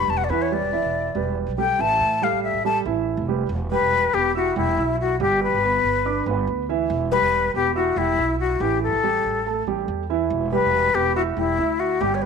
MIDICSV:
0, 0, Header, 1, 4, 480
1, 0, Start_track
1, 0, Tempo, 425834
1, 98, Time_signature, 4, 2, 24, 8
1, 13815, End_track
2, 0, Start_track
2, 0, Title_t, "Flute"
2, 0, Program_c, 0, 73
2, 0, Note_on_c, 0, 83, 92
2, 111, Note_on_c, 0, 81, 85
2, 128, Note_off_c, 0, 83, 0
2, 194, Note_on_c, 0, 78, 84
2, 211, Note_off_c, 0, 81, 0
2, 272, Note_on_c, 0, 74, 68
2, 289, Note_off_c, 0, 78, 0
2, 336, Note_on_c, 0, 71, 80
2, 353, Note_off_c, 0, 74, 0
2, 472, Note_on_c, 0, 73, 73
2, 489, Note_off_c, 0, 71, 0
2, 597, Note_on_c, 0, 74, 76
2, 614, Note_off_c, 0, 73, 0
2, 1549, Note_off_c, 0, 74, 0
2, 1786, Note_on_c, 0, 79, 93
2, 2039, Note_on_c, 0, 81, 104
2, 2056, Note_off_c, 0, 79, 0
2, 2519, Note_on_c, 0, 77, 84
2, 2535, Note_off_c, 0, 81, 0
2, 2739, Note_off_c, 0, 77, 0
2, 2746, Note_on_c, 0, 76, 88
2, 2967, Note_off_c, 0, 76, 0
2, 2993, Note_on_c, 0, 81, 81
2, 3134, Note_off_c, 0, 81, 0
2, 4185, Note_on_c, 0, 71, 107
2, 4667, Note_on_c, 0, 67, 103
2, 4684, Note_off_c, 0, 71, 0
2, 4905, Note_off_c, 0, 67, 0
2, 4916, Note_on_c, 0, 66, 95
2, 5132, Note_off_c, 0, 66, 0
2, 5156, Note_on_c, 0, 64, 86
2, 5596, Note_off_c, 0, 64, 0
2, 5640, Note_on_c, 0, 66, 88
2, 5855, Note_off_c, 0, 66, 0
2, 5876, Note_on_c, 0, 67, 89
2, 6093, Note_off_c, 0, 67, 0
2, 6122, Note_on_c, 0, 71, 91
2, 7028, Note_off_c, 0, 71, 0
2, 8020, Note_on_c, 0, 71, 115
2, 8468, Note_off_c, 0, 71, 0
2, 8514, Note_on_c, 0, 67, 107
2, 8732, Note_off_c, 0, 67, 0
2, 8743, Note_on_c, 0, 66, 94
2, 8990, Note_on_c, 0, 64, 97
2, 9007, Note_off_c, 0, 66, 0
2, 9457, Note_off_c, 0, 64, 0
2, 9464, Note_on_c, 0, 66, 84
2, 9702, Note_on_c, 0, 67, 81
2, 9719, Note_off_c, 0, 66, 0
2, 9942, Note_off_c, 0, 67, 0
2, 9951, Note_on_c, 0, 69, 95
2, 10861, Note_off_c, 0, 69, 0
2, 11859, Note_on_c, 0, 71, 98
2, 12339, Note_on_c, 0, 67, 102
2, 12356, Note_off_c, 0, 71, 0
2, 12569, Note_off_c, 0, 67, 0
2, 12576, Note_on_c, 0, 66, 96
2, 12644, Note_off_c, 0, 66, 0
2, 12819, Note_on_c, 0, 64, 92
2, 13298, Note_on_c, 0, 66, 86
2, 13315, Note_off_c, 0, 64, 0
2, 13537, Note_on_c, 0, 67, 90
2, 13554, Note_off_c, 0, 66, 0
2, 13692, Note_on_c, 0, 73, 59
2, 13709, Note_off_c, 0, 67, 0
2, 13775, Note_on_c, 0, 71, 93
2, 13792, Note_off_c, 0, 73, 0
2, 13815, Note_off_c, 0, 71, 0
2, 13815, End_track
3, 0, Start_track
3, 0, Title_t, "Grand piano"
3, 0, Program_c, 1, 0
3, 0, Note_on_c, 1, 55, 66
3, 0, Note_on_c, 1, 67, 66
3, 0, Note_on_c, 1, 71, 69
3, 251, Note_off_c, 1, 55, 0
3, 254, Note_off_c, 1, 67, 0
3, 256, Note_off_c, 1, 71, 0
3, 338, Note_on_c, 1, 52, 84
3, 340, Note_on_c, 1, 64, 89
3, 344, Note_on_c, 1, 76, 86
3, 535, Note_off_c, 1, 52, 0
3, 537, Note_off_c, 1, 64, 0
3, 539, Note_off_c, 1, 76, 0
3, 580, Note_on_c, 1, 55, 72
3, 582, Note_on_c, 1, 67, 66
3, 584, Note_on_c, 1, 71, 70
3, 776, Note_off_c, 1, 55, 0
3, 778, Note_off_c, 1, 67, 0
3, 779, Note_off_c, 1, 71, 0
3, 817, Note_on_c, 1, 52, 72
3, 821, Note_on_c, 1, 64, 78
3, 824, Note_on_c, 1, 76, 81
3, 1212, Note_off_c, 1, 52, 0
3, 1214, Note_off_c, 1, 64, 0
3, 1216, Note_off_c, 1, 76, 0
3, 1300, Note_on_c, 1, 55, 71
3, 1302, Note_on_c, 1, 67, 66
3, 1305, Note_on_c, 1, 71, 70
3, 1694, Note_off_c, 1, 55, 0
3, 1695, Note_off_c, 1, 67, 0
3, 1697, Note_off_c, 1, 71, 0
3, 1779, Note_on_c, 1, 55, 75
3, 1784, Note_on_c, 1, 67, 74
3, 1786, Note_on_c, 1, 69, 75
3, 1976, Note_off_c, 1, 55, 0
3, 1979, Note_off_c, 1, 67, 0
3, 1981, Note_off_c, 1, 69, 0
3, 2021, Note_on_c, 1, 52, 81
3, 2024, Note_on_c, 1, 64, 80
3, 2025, Note_on_c, 1, 76, 78
3, 2414, Note_off_c, 1, 52, 0
3, 2416, Note_off_c, 1, 64, 0
3, 2417, Note_off_c, 1, 76, 0
3, 2500, Note_on_c, 1, 55, 74
3, 2504, Note_on_c, 1, 67, 74
3, 2507, Note_on_c, 1, 69, 72
3, 2894, Note_off_c, 1, 55, 0
3, 2897, Note_off_c, 1, 67, 0
3, 2898, Note_off_c, 1, 69, 0
3, 2983, Note_on_c, 1, 55, 76
3, 2987, Note_on_c, 1, 67, 71
3, 2988, Note_on_c, 1, 69, 72
3, 3179, Note_off_c, 1, 55, 0
3, 3181, Note_off_c, 1, 67, 0
3, 3182, Note_off_c, 1, 69, 0
3, 3221, Note_on_c, 1, 52, 72
3, 3223, Note_on_c, 1, 64, 86
3, 3227, Note_on_c, 1, 76, 76
3, 3615, Note_off_c, 1, 52, 0
3, 3616, Note_off_c, 1, 64, 0
3, 3619, Note_off_c, 1, 76, 0
3, 3701, Note_on_c, 1, 55, 73
3, 3705, Note_on_c, 1, 67, 68
3, 3710, Note_on_c, 1, 71, 73
3, 3898, Note_off_c, 1, 55, 0
3, 3900, Note_off_c, 1, 67, 0
3, 3903, Note_off_c, 1, 71, 0
3, 4185, Note_on_c, 1, 55, 72
3, 4189, Note_on_c, 1, 67, 73
3, 4193, Note_on_c, 1, 79, 74
3, 4577, Note_off_c, 1, 55, 0
3, 4579, Note_off_c, 1, 67, 0
3, 4582, Note_off_c, 1, 79, 0
3, 4659, Note_on_c, 1, 59, 69
3, 4663, Note_on_c, 1, 71, 72
3, 4666, Note_on_c, 1, 83, 73
3, 4857, Note_off_c, 1, 59, 0
3, 4859, Note_off_c, 1, 71, 0
3, 4861, Note_off_c, 1, 83, 0
3, 4900, Note_on_c, 1, 64, 73
3, 4902, Note_on_c, 1, 76, 71
3, 4906, Note_on_c, 1, 88, 73
3, 5098, Note_off_c, 1, 64, 0
3, 5099, Note_off_c, 1, 76, 0
3, 5101, Note_off_c, 1, 88, 0
3, 5146, Note_on_c, 1, 55, 74
3, 5148, Note_on_c, 1, 67, 68
3, 5152, Note_on_c, 1, 79, 77
3, 5341, Note_off_c, 1, 55, 0
3, 5343, Note_off_c, 1, 67, 0
3, 5345, Note_off_c, 1, 79, 0
3, 5387, Note_on_c, 1, 64, 69
3, 5390, Note_on_c, 1, 76, 59
3, 5393, Note_on_c, 1, 88, 64
3, 5778, Note_off_c, 1, 64, 0
3, 5780, Note_off_c, 1, 76, 0
3, 5782, Note_off_c, 1, 88, 0
3, 5863, Note_on_c, 1, 55, 75
3, 5867, Note_on_c, 1, 67, 75
3, 5870, Note_on_c, 1, 79, 82
3, 6257, Note_off_c, 1, 55, 0
3, 6259, Note_off_c, 1, 67, 0
3, 6261, Note_off_c, 1, 79, 0
3, 6348, Note_on_c, 1, 59, 73
3, 6352, Note_on_c, 1, 71, 66
3, 6354, Note_on_c, 1, 83, 72
3, 6740, Note_off_c, 1, 59, 0
3, 6742, Note_off_c, 1, 71, 0
3, 6743, Note_off_c, 1, 83, 0
3, 6823, Note_on_c, 1, 62, 75
3, 6827, Note_on_c, 1, 74, 64
3, 6830, Note_on_c, 1, 86, 73
3, 7020, Note_off_c, 1, 62, 0
3, 7022, Note_off_c, 1, 74, 0
3, 7024, Note_off_c, 1, 86, 0
3, 7062, Note_on_c, 1, 59, 71
3, 7065, Note_on_c, 1, 71, 78
3, 7070, Note_on_c, 1, 83, 69
3, 7456, Note_off_c, 1, 59, 0
3, 7458, Note_off_c, 1, 71, 0
3, 7461, Note_off_c, 1, 83, 0
3, 7544, Note_on_c, 1, 52, 87
3, 7545, Note_on_c, 1, 64, 84
3, 7551, Note_on_c, 1, 76, 87
3, 7937, Note_off_c, 1, 52, 0
3, 7938, Note_off_c, 1, 64, 0
3, 7941, Note_off_c, 1, 76, 0
3, 8022, Note_on_c, 1, 55, 83
3, 8025, Note_on_c, 1, 67, 77
3, 8029, Note_on_c, 1, 79, 73
3, 8416, Note_off_c, 1, 55, 0
3, 8418, Note_off_c, 1, 67, 0
3, 8420, Note_off_c, 1, 79, 0
3, 8503, Note_on_c, 1, 59, 71
3, 8507, Note_on_c, 1, 71, 67
3, 8511, Note_on_c, 1, 83, 78
3, 8700, Note_off_c, 1, 59, 0
3, 8702, Note_off_c, 1, 71, 0
3, 8704, Note_off_c, 1, 83, 0
3, 8741, Note_on_c, 1, 64, 73
3, 8744, Note_on_c, 1, 76, 75
3, 8748, Note_on_c, 1, 88, 75
3, 8938, Note_off_c, 1, 64, 0
3, 8940, Note_off_c, 1, 76, 0
3, 8943, Note_off_c, 1, 88, 0
3, 8985, Note_on_c, 1, 55, 63
3, 8988, Note_on_c, 1, 67, 69
3, 8991, Note_on_c, 1, 79, 74
3, 9181, Note_off_c, 1, 55, 0
3, 9183, Note_off_c, 1, 67, 0
3, 9185, Note_off_c, 1, 79, 0
3, 9223, Note_on_c, 1, 64, 60
3, 9225, Note_on_c, 1, 76, 59
3, 9229, Note_on_c, 1, 88, 65
3, 9616, Note_off_c, 1, 64, 0
3, 9618, Note_off_c, 1, 76, 0
3, 9620, Note_off_c, 1, 88, 0
3, 9699, Note_on_c, 1, 52, 81
3, 9700, Note_on_c, 1, 64, 74
3, 9704, Note_on_c, 1, 76, 81
3, 10094, Note_off_c, 1, 52, 0
3, 10095, Note_off_c, 1, 64, 0
3, 10097, Note_off_c, 1, 76, 0
3, 10182, Note_on_c, 1, 55, 71
3, 10187, Note_on_c, 1, 67, 72
3, 10190, Note_on_c, 1, 79, 70
3, 10576, Note_off_c, 1, 55, 0
3, 10578, Note_off_c, 1, 67, 0
3, 10580, Note_off_c, 1, 79, 0
3, 10663, Note_on_c, 1, 57, 71
3, 10668, Note_on_c, 1, 69, 63
3, 10671, Note_on_c, 1, 81, 76
3, 10860, Note_off_c, 1, 57, 0
3, 10862, Note_off_c, 1, 69, 0
3, 10864, Note_off_c, 1, 81, 0
3, 10903, Note_on_c, 1, 55, 69
3, 10908, Note_on_c, 1, 67, 72
3, 10909, Note_on_c, 1, 79, 70
3, 11296, Note_off_c, 1, 55, 0
3, 11299, Note_off_c, 1, 67, 0
3, 11299, Note_off_c, 1, 79, 0
3, 11380, Note_on_c, 1, 52, 81
3, 11384, Note_on_c, 1, 64, 79
3, 11388, Note_on_c, 1, 76, 79
3, 11774, Note_off_c, 1, 52, 0
3, 11776, Note_off_c, 1, 64, 0
3, 11778, Note_off_c, 1, 76, 0
3, 11861, Note_on_c, 1, 55, 74
3, 11864, Note_on_c, 1, 67, 81
3, 11866, Note_on_c, 1, 79, 78
3, 12254, Note_off_c, 1, 55, 0
3, 12256, Note_off_c, 1, 67, 0
3, 12257, Note_off_c, 1, 79, 0
3, 12340, Note_on_c, 1, 59, 70
3, 12342, Note_on_c, 1, 71, 68
3, 12347, Note_on_c, 1, 83, 74
3, 12536, Note_off_c, 1, 59, 0
3, 12538, Note_off_c, 1, 71, 0
3, 12541, Note_off_c, 1, 83, 0
3, 12578, Note_on_c, 1, 64, 67
3, 12581, Note_on_c, 1, 76, 76
3, 12585, Note_on_c, 1, 88, 76
3, 12775, Note_off_c, 1, 64, 0
3, 12777, Note_off_c, 1, 76, 0
3, 12779, Note_off_c, 1, 88, 0
3, 12817, Note_on_c, 1, 55, 66
3, 12820, Note_on_c, 1, 67, 70
3, 12824, Note_on_c, 1, 79, 68
3, 13015, Note_off_c, 1, 55, 0
3, 13016, Note_off_c, 1, 67, 0
3, 13019, Note_off_c, 1, 79, 0
3, 13058, Note_on_c, 1, 64, 67
3, 13060, Note_on_c, 1, 76, 70
3, 13065, Note_on_c, 1, 88, 64
3, 13452, Note_off_c, 1, 64, 0
3, 13452, Note_off_c, 1, 76, 0
3, 13455, Note_off_c, 1, 88, 0
3, 13537, Note_on_c, 1, 55, 82
3, 13541, Note_on_c, 1, 67, 82
3, 13543, Note_on_c, 1, 79, 78
3, 13815, Note_off_c, 1, 55, 0
3, 13815, Note_off_c, 1, 67, 0
3, 13815, Note_off_c, 1, 79, 0
3, 13815, End_track
4, 0, Start_track
4, 0, Title_t, "Upright bass"
4, 0, Program_c, 2, 32
4, 89, Note_on_c, 2, 28, 100
4, 321, Note_off_c, 2, 28, 0
4, 329, Note_on_c, 2, 40, 101
4, 676, Note_off_c, 2, 40, 0
4, 691, Note_on_c, 2, 28, 74
4, 923, Note_off_c, 2, 28, 0
4, 929, Note_on_c, 2, 28, 80
4, 1276, Note_off_c, 2, 28, 0
4, 1293, Note_on_c, 2, 28, 94
4, 1639, Note_off_c, 2, 28, 0
4, 1651, Note_on_c, 2, 35, 90
4, 1998, Note_off_c, 2, 35, 0
4, 2016, Note_on_c, 2, 33, 106
4, 2246, Note_off_c, 2, 33, 0
4, 2257, Note_on_c, 2, 45, 94
4, 2601, Note_off_c, 2, 45, 0
4, 2615, Note_on_c, 2, 33, 72
4, 2846, Note_off_c, 2, 33, 0
4, 2857, Note_on_c, 2, 33, 81
4, 3201, Note_off_c, 2, 33, 0
4, 3217, Note_on_c, 2, 33, 94
4, 3561, Note_off_c, 2, 33, 0
4, 3576, Note_on_c, 2, 29, 99
4, 3921, Note_off_c, 2, 29, 0
4, 3934, Note_on_c, 2, 28, 109
4, 4280, Note_off_c, 2, 28, 0
4, 4296, Note_on_c, 2, 28, 88
4, 4641, Note_off_c, 2, 28, 0
4, 4658, Note_on_c, 2, 28, 90
4, 5116, Note_off_c, 2, 28, 0
4, 5139, Note_on_c, 2, 28, 101
4, 5369, Note_off_c, 2, 28, 0
4, 5379, Note_on_c, 2, 35, 103
4, 5837, Note_off_c, 2, 35, 0
4, 5859, Note_on_c, 2, 31, 108
4, 6203, Note_off_c, 2, 31, 0
4, 6218, Note_on_c, 2, 31, 87
4, 6562, Note_off_c, 2, 31, 0
4, 6578, Note_on_c, 2, 31, 85
4, 7036, Note_off_c, 2, 31, 0
4, 7058, Note_on_c, 2, 31, 101
4, 7288, Note_off_c, 2, 31, 0
4, 7297, Note_on_c, 2, 38, 97
4, 7756, Note_off_c, 2, 38, 0
4, 7776, Note_on_c, 2, 28, 115
4, 8121, Note_off_c, 2, 28, 0
4, 8135, Note_on_c, 2, 28, 93
4, 8481, Note_off_c, 2, 28, 0
4, 8496, Note_on_c, 2, 28, 84
4, 8955, Note_off_c, 2, 28, 0
4, 8974, Note_on_c, 2, 28, 98
4, 9206, Note_off_c, 2, 28, 0
4, 9214, Note_on_c, 2, 35, 99
4, 9674, Note_off_c, 2, 35, 0
4, 9695, Note_on_c, 2, 33, 112
4, 10040, Note_off_c, 2, 33, 0
4, 10059, Note_on_c, 2, 33, 87
4, 10402, Note_off_c, 2, 33, 0
4, 10419, Note_on_c, 2, 33, 82
4, 10876, Note_off_c, 2, 33, 0
4, 10896, Note_on_c, 2, 33, 82
4, 11126, Note_off_c, 2, 33, 0
4, 11137, Note_on_c, 2, 40, 101
4, 11595, Note_off_c, 2, 40, 0
4, 11614, Note_on_c, 2, 28, 111
4, 11959, Note_off_c, 2, 28, 0
4, 11973, Note_on_c, 2, 28, 88
4, 12318, Note_off_c, 2, 28, 0
4, 12331, Note_on_c, 2, 28, 81
4, 12791, Note_off_c, 2, 28, 0
4, 12812, Note_on_c, 2, 28, 94
4, 13043, Note_off_c, 2, 28, 0
4, 13052, Note_on_c, 2, 38, 95
4, 13511, Note_off_c, 2, 38, 0
4, 13532, Note_on_c, 2, 31, 108
4, 13815, Note_off_c, 2, 31, 0
4, 13815, End_track
0, 0, End_of_file